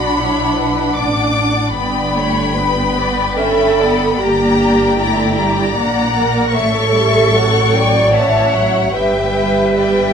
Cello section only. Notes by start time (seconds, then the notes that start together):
Already playing: F#4
0.15 E4
0.97 D4
1.76 D4
2.97 B4
3.38 A4
4.19 G4
4.99 E4
5.77 D4
6.15 A#4
6.53 A4
7.74 D5
8.14 C#5
8.94 B4